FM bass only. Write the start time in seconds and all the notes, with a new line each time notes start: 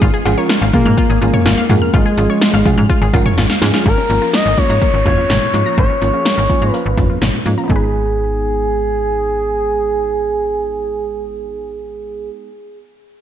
0.02 G#1
0.26 G#1
0.62 G#1
0.86 G#2
1.10 G#1
1.22 G#1
1.46 G#1
1.70 G#2
1.94 G#1
2.18 G#1
2.54 G#1
2.78 G#2
3.02 G#1
3.13 G#1
3.38 G#1
3.62 G#2
3.86 G#1
4.10 G#1
4.46 G#1
4.70 G#2
4.94 G#1
5.06 G#1
5.30 G#1
5.54 G#2
5.78 G#1
6.02 G#1
6.38 G#1
6.62 G#2
6.86 G#1
6.97 G#1
7.22 G#1
7.46 G#2
7.70 G#1